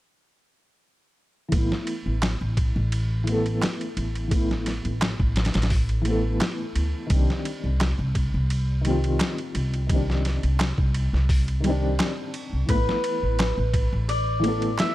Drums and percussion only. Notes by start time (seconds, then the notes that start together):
1.52 kick, ride
1.72 snare
1.87 ride
2.22 snare, ride, darbuka tek
2.57 kick, ride
2.92 ride
3.27 ride
3.46 ride
3.62 snare, ride, darbuka tek
3.81 ride
3.97 ride
4.15 ride
4.31 kick, ride
4.51 snare
4.66 snare, ride
4.85 ride
5.01 snare, ride, darbuka tek
5.20 kick
5.36 snare, ride
5.45 snare, ride
5.54 snare, ride
5.62 snare, ride
5.70 kick, open hi-hat
5.89 ride
6.05 ride
6.40 snare, ride, darbuka tek
6.76 ride
7.10 kick, ride
7.30 snare
7.45 ride
7.80 snare, ride, darbuka tek
8.15 kick, ride
8.50 ride
8.85 ride
9.04 ride
9.19 snare, ride, darbuka tek
9.38 ride
9.55 ride
9.74 ride
9.89 kick, ride
10.10 snare
10.25 snare, ride
10.43 ride
10.59 snare, ride, darbuka tek
10.78 kick
10.94 ride
11.14 snare
11.29 kick, open hi-hat
11.48 ride
11.64 ride
11.99 snare, ride, darbuka tek
12.34 ride
12.69 kick, ride
12.89 snare
13.04 ride
13.39 snare, ride, darbuka tek
13.74 kick, ride
14.09 ride
14.44 ride
14.62 ride
14.78 snare, ride, darbuka tek